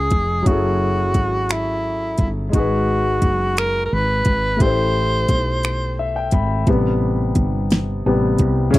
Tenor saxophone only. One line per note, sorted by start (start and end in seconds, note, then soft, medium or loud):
0.00 0.48 G#4 medium
0.47 1.54 F#4 medium
1.52 2.29 E4 medium
2.55 3.60 F#4 medium
3.58 3.85 A#4 loud
3.85 3.95 A#4 medium
3.94 4.63 B4 loud
4.62 5.99 C5 medium